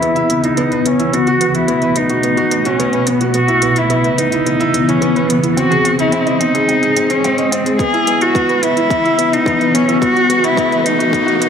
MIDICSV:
0, 0, Header, 1, 6, 480
1, 0, Start_track
1, 0, Key_signature, 4, "minor"
1, 0, Tempo, 555556
1, 975, Time_signature, 4, 2, 24, 8
1, 9928, End_track
2, 0, Start_track
2, 0, Title_t, "Cello"
2, 0, Program_c, 0, 42
2, 0, Note_on_c, 0, 64, 96
2, 382, Note_on_c, 0, 63, 82
2, 395, Note_off_c, 0, 64, 0
2, 751, Note_on_c, 0, 61, 86
2, 764, Note_off_c, 0, 63, 0
2, 988, Note_on_c, 0, 66, 108
2, 1001, Note_off_c, 0, 61, 0
2, 1336, Note_on_c, 0, 64, 98
2, 1349, Note_off_c, 0, 66, 0
2, 1700, Note_on_c, 0, 63, 91
2, 1713, Note_off_c, 0, 64, 0
2, 2297, Note_on_c, 0, 61, 86
2, 2309, Note_off_c, 0, 63, 0
2, 2665, Note_on_c, 0, 59, 77
2, 2678, Note_off_c, 0, 61, 0
2, 2889, Note_off_c, 0, 59, 0
2, 2894, Note_on_c, 0, 66, 106
2, 3262, Note_on_c, 0, 64, 93
2, 3275, Note_off_c, 0, 66, 0
2, 3614, Note_on_c, 0, 63, 91
2, 3627, Note_off_c, 0, 64, 0
2, 4218, Note_on_c, 0, 61, 84
2, 4231, Note_off_c, 0, 63, 0
2, 4572, Note_on_c, 0, 59, 77
2, 4585, Note_off_c, 0, 61, 0
2, 4803, Note_off_c, 0, 59, 0
2, 4808, Note_on_c, 0, 66, 103
2, 5146, Note_off_c, 0, 66, 0
2, 5178, Note_on_c, 0, 64, 96
2, 5528, Note_on_c, 0, 63, 96
2, 5541, Note_off_c, 0, 64, 0
2, 6133, Note_on_c, 0, 61, 84
2, 6146, Note_off_c, 0, 63, 0
2, 6489, Note_on_c, 0, 60, 74
2, 6502, Note_off_c, 0, 61, 0
2, 6728, Note_off_c, 0, 60, 0
2, 6734, Note_on_c, 0, 68, 105
2, 7099, Note_on_c, 0, 66, 96
2, 7112, Note_off_c, 0, 68, 0
2, 7457, Note_on_c, 0, 64, 98
2, 7470, Note_off_c, 0, 66, 0
2, 8062, Note_on_c, 0, 63, 91
2, 8075, Note_off_c, 0, 64, 0
2, 8421, Note_on_c, 0, 61, 80
2, 8434, Note_off_c, 0, 63, 0
2, 8654, Note_off_c, 0, 61, 0
2, 8660, Note_on_c, 0, 66, 105
2, 9020, Note_on_c, 0, 64, 99
2, 9033, Note_off_c, 0, 66, 0
2, 9378, Note_on_c, 0, 63, 90
2, 9391, Note_off_c, 0, 64, 0
2, 9928, Note_off_c, 0, 63, 0
2, 9928, End_track
3, 0, Start_track
3, 0, Title_t, "Grand piano"
3, 0, Program_c, 1, 0
3, 0, Control_c, 1, 64, 127
3, 0, Note_on_c, 1, 59, 68
3, 0, Note_on_c, 1, 64, 60
3, 0, Note_on_c, 1, 71, 62
3, 16, Note_off_c, 1, 59, 0
3, 16, Note_on_c, 1, 59, 69
3, 129, Note_off_c, 1, 59, 0
3, 133, Note_off_c, 1, 64, 0
3, 133, Note_on_c, 1, 64, 85
3, 248, Note_off_c, 1, 64, 0
3, 258, Note_on_c, 1, 59, 56
3, 370, Note_off_c, 1, 59, 0
3, 375, Note_on_c, 1, 64, 65
3, 489, Note_off_c, 1, 64, 0
3, 496, Note_on_c, 1, 59, 90
3, 610, Note_off_c, 1, 59, 0
3, 615, Note_off_c, 1, 71, 0
3, 615, Note_on_c, 1, 71, 64
3, 729, Note_off_c, 1, 71, 0
3, 740, Note_on_c, 1, 59, 63
3, 852, Note_off_c, 1, 59, 0
3, 855, Note_on_c, 1, 64, 65
3, 924, Note_off_c, 1, 64, 0
3, 977, Note_on_c, 1, 59, 73
3, 986, Control_c, 1, 64, 0
3, 1090, Note_off_c, 1, 59, 0
3, 1098, Note_on_c, 1, 66, 88
3, 1149, Control_c, 1, 64, 127
3, 1211, Note_off_c, 1, 66, 0
3, 1216, Note_on_c, 1, 59, 67
3, 1330, Note_off_c, 1, 59, 0
3, 1332, Note_on_c, 1, 66, 68
3, 1447, Note_off_c, 1, 66, 0
3, 1451, Note_on_c, 1, 59, 84
3, 1567, Note_off_c, 1, 59, 0
3, 1576, Note_on_c, 1, 71, 65
3, 1689, Note_off_c, 1, 71, 0
3, 1696, Note_on_c, 1, 59, 72
3, 1810, Note_off_c, 1, 59, 0
3, 1812, Note_on_c, 1, 66, 68
3, 1882, Note_off_c, 1, 66, 0
3, 1934, Note_on_c, 1, 59, 72
3, 2048, Note_off_c, 1, 59, 0
3, 2049, Note_on_c, 1, 66, 90
3, 2166, Note_off_c, 1, 66, 0
3, 2172, Note_on_c, 1, 59, 63
3, 2287, Note_off_c, 1, 59, 0
3, 2292, Note_on_c, 1, 66, 73
3, 2408, Note_off_c, 1, 66, 0
3, 2415, Note_on_c, 1, 59, 98
3, 2529, Note_off_c, 1, 59, 0
3, 2535, Note_on_c, 1, 71, 66
3, 2649, Note_off_c, 1, 71, 0
3, 2653, Note_on_c, 1, 59, 62
3, 2768, Note_off_c, 1, 59, 0
3, 2772, Note_on_c, 1, 66, 64
3, 2842, Note_off_c, 1, 66, 0
3, 2890, Note_on_c, 1, 59, 75
3, 2908, Control_c, 1, 64, 0
3, 3007, Note_off_c, 1, 59, 0
3, 3007, Note_on_c, 1, 64, 85
3, 3079, Control_c, 1, 64, 127
3, 3125, Note_off_c, 1, 64, 0
3, 3133, Note_on_c, 1, 59, 69
3, 3248, Note_off_c, 1, 59, 0
3, 3255, Note_on_c, 1, 64, 74
3, 3369, Note_off_c, 1, 64, 0
3, 3370, Note_on_c, 1, 59, 90
3, 3486, Note_off_c, 1, 59, 0
3, 3497, Note_on_c, 1, 71, 66
3, 3610, Note_off_c, 1, 71, 0
3, 3616, Note_on_c, 1, 59, 71
3, 3730, Note_off_c, 1, 59, 0
3, 3734, Note_on_c, 1, 64, 68
3, 3803, Note_off_c, 1, 64, 0
3, 3854, Note_on_c, 1, 59, 70
3, 3969, Note_off_c, 1, 59, 0
3, 3972, Note_on_c, 1, 64, 91
3, 4087, Note_off_c, 1, 64, 0
3, 4094, Note_on_c, 1, 59, 69
3, 4208, Note_off_c, 1, 59, 0
3, 4213, Note_on_c, 1, 64, 69
3, 4328, Note_off_c, 1, 64, 0
3, 4330, Note_on_c, 1, 59, 93
3, 4447, Note_off_c, 1, 59, 0
3, 4457, Note_on_c, 1, 71, 69
3, 4570, Note_off_c, 1, 71, 0
3, 4571, Note_on_c, 1, 59, 68
3, 4687, Note_off_c, 1, 59, 0
3, 4689, Note_on_c, 1, 64, 67
3, 4760, Note_off_c, 1, 64, 0
3, 4813, Note_on_c, 1, 60, 80
3, 4828, Control_c, 1, 64, 0
3, 4928, Note_off_c, 1, 60, 0
3, 4930, Note_on_c, 1, 68, 91
3, 4965, Control_c, 1, 64, 127
3, 5047, Note_off_c, 1, 68, 0
3, 5051, Note_on_c, 1, 60, 74
3, 5167, Note_off_c, 1, 60, 0
3, 5171, Note_on_c, 1, 68, 68
3, 5287, Note_off_c, 1, 68, 0
3, 5289, Note_on_c, 1, 60, 87
3, 5406, Note_off_c, 1, 60, 0
3, 5411, Note_on_c, 1, 75, 67
3, 5527, Note_off_c, 1, 75, 0
3, 5535, Note_on_c, 1, 60, 70
3, 5649, Note_off_c, 1, 60, 0
3, 5655, Note_on_c, 1, 68, 71
3, 5723, Note_off_c, 1, 68, 0
3, 5776, Note_on_c, 1, 60, 66
3, 5890, Note_off_c, 1, 60, 0
3, 5896, Note_on_c, 1, 68, 84
3, 6010, Note_off_c, 1, 68, 0
3, 6018, Note_on_c, 1, 60, 64
3, 6131, Note_off_c, 1, 60, 0
3, 6139, Note_on_c, 1, 68, 70
3, 6251, Note_off_c, 1, 68, 0
3, 6261, Note_on_c, 1, 60, 94
3, 6372, Note_off_c, 1, 60, 0
3, 6382, Note_on_c, 1, 75, 68
3, 6492, Note_off_c, 1, 75, 0
3, 6496, Note_on_c, 1, 60, 67
3, 6610, Note_off_c, 1, 60, 0
3, 6614, Note_on_c, 1, 68, 65
3, 6683, Note_off_c, 1, 68, 0
3, 6735, Note_on_c, 1, 59, 73
3, 6746, Control_c, 1, 64, 0
3, 6849, Note_off_c, 1, 59, 0
3, 6852, Note_on_c, 1, 64, 88
3, 6882, Control_c, 1, 64, 127
3, 6967, Note_off_c, 1, 64, 0
3, 6977, Note_on_c, 1, 59, 71
3, 7090, Note_off_c, 1, 59, 0
3, 7093, Note_on_c, 1, 64, 72
3, 7208, Note_off_c, 1, 64, 0
3, 7214, Note_on_c, 1, 59, 90
3, 7329, Note_off_c, 1, 59, 0
3, 7336, Note_on_c, 1, 71, 67
3, 7449, Note_off_c, 1, 71, 0
3, 7453, Note_on_c, 1, 59, 69
3, 7568, Note_off_c, 1, 59, 0
3, 7573, Note_on_c, 1, 64, 69
3, 7643, Note_off_c, 1, 64, 0
3, 7688, Note_on_c, 1, 59, 67
3, 7805, Note_off_c, 1, 59, 0
3, 7809, Note_on_c, 1, 64, 91
3, 7926, Note_off_c, 1, 64, 0
3, 7933, Note_on_c, 1, 59, 64
3, 8048, Note_off_c, 1, 59, 0
3, 8053, Note_on_c, 1, 64, 69
3, 8168, Note_off_c, 1, 64, 0
3, 8173, Note_on_c, 1, 59, 100
3, 8288, Note_off_c, 1, 59, 0
3, 8294, Note_on_c, 1, 71, 66
3, 8409, Note_off_c, 1, 71, 0
3, 8416, Note_on_c, 1, 59, 70
3, 8530, Note_off_c, 1, 59, 0
3, 8533, Note_on_c, 1, 64, 73
3, 8602, Note_off_c, 1, 64, 0
3, 8655, Note_on_c, 1, 59, 82
3, 8665, Control_c, 1, 64, 0
3, 8769, Note_off_c, 1, 59, 0
3, 8774, Note_on_c, 1, 66, 89
3, 8830, Control_c, 1, 64, 127
3, 8888, Note_off_c, 1, 66, 0
3, 8895, Note_on_c, 1, 59, 71
3, 9009, Note_off_c, 1, 59, 0
3, 9009, Note_on_c, 1, 66, 78
3, 9126, Note_off_c, 1, 66, 0
3, 9128, Note_on_c, 1, 59, 96
3, 9245, Note_off_c, 1, 59, 0
3, 9245, Note_on_c, 1, 71, 72
3, 9364, Note_off_c, 1, 71, 0
3, 9365, Note_on_c, 1, 59, 74
3, 9484, Note_off_c, 1, 59, 0
3, 9490, Note_on_c, 1, 66, 72
3, 9561, Note_off_c, 1, 66, 0
3, 9611, Note_on_c, 1, 59, 70
3, 9727, Note_off_c, 1, 59, 0
3, 9727, Note_on_c, 1, 66, 95
3, 9845, Note_off_c, 1, 66, 0
3, 9851, Note_on_c, 1, 59, 68
3, 9928, Note_off_c, 1, 59, 0
3, 9928, End_track
4, 0, Start_track
4, 0, Title_t, "Ambient pad"
4, 0, Program_c, 2, 92
4, 0, Note_on_c, 2, 49, 69
4, 0, Note_on_c, 2, 52, 81
4, 0, Note_on_c, 2, 59, 70
4, 951, Note_off_c, 2, 49, 0
4, 951, Note_off_c, 2, 52, 0
4, 952, Note_off_c, 2, 59, 0
4, 980, Note_on_c, 2, 57, 65
4, 985, Note_on_c, 2, 47, 78
4, 985, Note_on_c, 2, 75, 81
4, 2878, Note_off_c, 2, 57, 0
4, 2881, Note_off_c, 2, 47, 0
4, 2881, Note_off_c, 2, 75, 0
4, 2890, Note_on_c, 2, 52, 83
4, 2893, Note_on_c, 2, 49, 75
4, 2896, Note_on_c, 2, 59, 72
4, 4793, Note_off_c, 2, 52, 0
4, 4795, Note_off_c, 2, 49, 0
4, 4796, Note_off_c, 2, 59, 0
4, 4810, Note_on_c, 2, 56, 71
4, 4813, Note_on_c, 2, 75, 91
4, 6713, Note_off_c, 2, 56, 0
4, 6715, Note_off_c, 2, 75, 0
4, 6738, Note_on_c, 2, 59, 68
4, 6740, Note_on_c, 2, 52, 84
4, 6741, Note_on_c, 2, 49, 74
4, 8637, Note_off_c, 2, 59, 0
4, 8638, Note_off_c, 2, 52, 0
4, 8639, Note_off_c, 2, 49, 0
4, 8656, Note_on_c, 2, 47, 80
4, 8656, Note_on_c, 2, 57, 72
4, 8658, Note_on_c, 2, 75, 88
4, 9928, Note_off_c, 2, 47, 0
4, 9928, Note_off_c, 2, 57, 0
4, 9928, Note_off_c, 2, 75, 0
4, 9928, End_track
5, 0, Start_track
5, 0, Title_t, "Riser"
5, 0, Program_c, 3, 103
5, 6732, Note_on_c, 3, 60, 73
5, 9928, Note_off_c, 3, 60, 0
5, 9928, End_track
6, 0, Start_track
6, 0, Title_t, "Drums"
6, 22, Note_on_c, 9, 42, 37
6, 108, Note_off_c, 9, 42, 0
6, 138, Note_on_c, 9, 42, 18
6, 225, Note_off_c, 9, 42, 0
6, 258, Note_on_c, 9, 42, 61
6, 344, Note_off_c, 9, 42, 0
6, 377, Note_on_c, 9, 42, 27
6, 463, Note_off_c, 9, 42, 0
6, 495, Note_on_c, 9, 42, 37
6, 581, Note_off_c, 9, 42, 0
6, 620, Note_on_c, 9, 42, 17
6, 707, Note_off_c, 9, 42, 0
6, 739, Note_on_c, 9, 42, 66
6, 826, Note_off_c, 9, 42, 0
6, 860, Note_on_c, 9, 42, 27
6, 947, Note_off_c, 9, 42, 0
6, 980, Note_on_c, 9, 42, 39
6, 1067, Note_off_c, 9, 42, 0
6, 1097, Note_on_c, 9, 42, 18
6, 1184, Note_off_c, 9, 42, 0
6, 1217, Note_on_c, 9, 42, 70
6, 1303, Note_off_c, 9, 42, 0
6, 1336, Note_on_c, 9, 42, 28
6, 1423, Note_off_c, 9, 42, 0
6, 1454, Note_on_c, 9, 42, 42
6, 1540, Note_off_c, 9, 42, 0
6, 1570, Note_on_c, 9, 42, 17
6, 1657, Note_off_c, 9, 42, 0
6, 1691, Note_on_c, 9, 42, 65
6, 1777, Note_off_c, 9, 42, 0
6, 1810, Note_on_c, 9, 42, 31
6, 1897, Note_off_c, 9, 42, 0
6, 1930, Note_on_c, 9, 42, 35
6, 2016, Note_off_c, 9, 42, 0
6, 2051, Note_on_c, 9, 42, 20
6, 2138, Note_off_c, 9, 42, 0
6, 2172, Note_on_c, 9, 42, 68
6, 2259, Note_off_c, 9, 42, 0
6, 2292, Note_on_c, 9, 42, 28
6, 2379, Note_off_c, 9, 42, 0
6, 2417, Note_on_c, 9, 42, 41
6, 2503, Note_off_c, 9, 42, 0
6, 2531, Note_on_c, 9, 42, 19
6, 2618, Note_off_c, 9, 42, 0
6, 2650, Note_on_c, 9, 42, 74
6, 2737, Note_off_c, 9, 42, 0
6, 2771, Note_on_c, 9, 42, 29
6, 2858, Note_off_c, 9, 42, 0
6, 2885, Note_on_c, 9, 42, 41
6, 2971, Note_off_c, 9, 42, 0
6, 3010, Note_on_c, 9, 42, 19
6, 3096, Note_off_c, 9, 42, 0
6, 3127, Note_on_c, 9, 42, 70
6, 3213, Note_off_c, 9, 42, 0
6, 3249, Note_on_c, 9, 42, 30
6, 3336, Note_off_c, 9, 42, 0
6, 3369, Note_on_c, 9, 42, 39
6, 3456, Note_off_c, 9, 42, 0
6, 3493, Note_on_c, 9, 42, 18
6, 3580, Note_off_c, 9, 42, 0
6, 3615, Note_on_c, 9, 42, 70
6, 3701, Note_off_c, 9, 42, 0
6, 3734, Note_on_c, 9, 42, 30
6, 3821, Note_off_c, 9, 42, 0
6, 3858, Note_on_c, 9, 42, 42
6, 3944, Note_off_c, 9, 42, 0
6, 3980, Note_on_c, 9, 42, 21
6, 4066, Note_off_c, 9, 42, 0
6, 4097, Note_on_c, 9, 42, 68
6, 4184, Note_off_c, 9, 42, 0
6, 4223, Note_on_c, 9, 42, 28
6, 4309, Note_off_c, 9, 42, 0
6, 4337, Note_on_c, 9, 42, 43
6, 4423, Note_off_c, 9, 42, 0
6, 4461, Note_on_c, 9, 42, 19
6, 4547, Note_off_c, 9, 42, 0
6, 4579, Note_on_c, 9, 42, 72
6, 4665, Note_off_c, 9, 42, 0
6, 4696, Note_on_c, 9, 42, 31
6, 4782, Note_off_c, 9, 42, 0
6, 4816, Note_on_c, 9, 42, 42
6, 4903, Note_off_c, 9, 42, 0
6, 4939, Note_on_c, 9, 42, 21
6, 5026, Note_off_c, 9, 42, 0
6, 5055, Note_on_c, 9, 42, 69
6, 5142, Note_off_c, 9, 42, 0
6, 5176, Note_on_c, 9, 42, 31
6, 5262, Note_off_c, 9, 42, 0
6, 5290, Note_on_c, 9, 42, 45
6, 5377, Note_off_c, 9, 42, 0
6, 5415, Note_on_c, 9, 42, 19
6, 5502, Note_off_c, 9, 42, 0
6, 5536, Note_on_c, 9, 42, 68
6, 5622, Note_off_c, 9, 42, 0
6, 5658, Note_on_c, 9, 42, 32
6, 5744, Note_off_c, 9, 42, 0
6, 5778, Note_on_c, 9, 42, 38
6, 5864, Note_off_c, 9, 42, 0
6, 5900, Note_on_c, 9, 42, 21
6, 5986, Note_off_c, 9, 42, 0
6, 6018, Note_on_c, 9, 42, 70
6, 6104, Note_off_c, 9, 42, 0
6, 6134, Note_on_c, 9, 42, 30
6, 6221, Note_off_c, 9, 42, 0
6, 6259, Note_on_c, 9, 42, 42
6, 6345, Note_off_c, 9, 42, 0
6, 6377, Note_on_c, 9, 42, 20
6, 6464, Note_off_c, 9, 42, 0
6, 6500, Note_on_c, 9, 42, 70
6, 6587, Note_off_c, 9, 42, 0
6, 6620, Note_on_c, 9, 42, 30
6, 6706, Note_off_c, 9, 42, 0
6, 6732, Note_on_c, 9, 36, 98
6, 6740, Note_on_c, 9, 42, 42
6, 6819, Note_off_c, 9, 36, 0
6, 6826, Note_off_c, 9, 42, 0
6, 6860, Note_on_c, 9, 42, 20
6, 6946, Note_off_c, 9, 42, 0
6, 6974, Note_on_c, 9, 42, 69
6, 7061, Note_off_c, 9, 42, 0
6, 7096, Note_on_c, 9, 42, 30
6, 7183, Note_off_c, 9, 42, 0
6, 7214, Note_on_c, 9, 36, 96
6, 7221, Note_on_c, 9, 42, 41
6, 7300, Note_off_c, 9, 36, 0
6, 7307, Note_off_c, 9, 42, 0
6, 7338, Note_on_c, 9, 42, 19
6, 7425, Note_off_c, 9, 42, 0
6, 7455, Note_on_c, 9, 42, 62
6, 7541, Note_off_c, 9, 42, 0
6, 7577, Note_on_c, 9, 42, 30
6, 7664, Note_off_c, 9, 42, 0
6, 7693, Note_on_c, 9, 36, 103
6, 7699, Note_on_c, 9, 42, 39
6, 7780, Note_off_c, 9, 36, 0
6, 7786, Note_off_c, 9, 42, 0
6, 7824, Note_on_c, 9, 42, 21
6, 7910, Note_off_c, 9, 42, 0
6, 7937, Note_on_c, 9, 42, 69
6, 8024, Note_off_c, 9, 42, 0
6, 8064, Note_on_c, 9, 42, 30
6, 8151, Note_off_c, 9, 42, 0
6, 8175, Note_on_c, 9, 36, 100
6, 8187, Note_on_c, 9, 42, 39
6, 8261, Note_off_c, 9, 36, 0
6, 8274, Note_off_c, 9, 42, 0
6, 8304, Note_on_c, 9, 42, 21
6, 8390, Note_off_c, 9, 42, 0
6, 8422, Note_on_c, 9, 42, 73
6, 8509, Note_off_c, 9, 42, 0
6, 8544, Note_on_c, 9, 42, 30
6, 8630, Note_off_c, 9, 42, 0
6, 8656, Note_on_c, 9, 36, 94
6, 8662, Note_on_c, 9, 42, 42
6, 8742, Note_off_c, 9, 36, 0
6, 8748, Note_off_c, 9, 42, 0
6, 8784, Note_on_c, 9, 42, 19
6, 8870, Note_off_c, 9, 42, 0
6, 8898, Note_on_c, 9, 42, 68
6, 8984, Note_off_c, 9, 42, 0
6, 9020, Note_on_c, 9, 42, 32
6, 9107, Note_off_c, 9, 42, 0
6, 9136, Note_on_c, 9, 36, 98
6, 9144, Note_on_c, 9, 42, 39
6, 9222, Note_off_c, 9, 36, 0
6, 9230, Note_off_c, 9, 42, 0
6, 9265, Note_on_c, 9, 42, 18
6, 9351, Note_off_c, 9, 42, 0
6, 9381, Note_on_c, 9, 42, 67
6, 9468, Note_off_c, 9, 42, 0
6, 9507, Note_on_c, 9, 42, 31
6, 9593, Note_off_c, 9, 42, 0
6, 9616, Note_on_c, 9, 36, 103
6, 9628, Note_on_c, 9, 42, 41
6, 9703, Note_off_c, 9, 36, 0
6, 9715, Note_off_c, 9, 42, 0
6, 9746, Note_on_c, 9, 42, 20
6, 9833, Note_off_c, 9, 42, 0
6, 9864, Note_on_c, 9, 42, 68
6, 9928, Note_off_c, 9, 42, 0
6, 9928, End_track
0, 0, End_of_file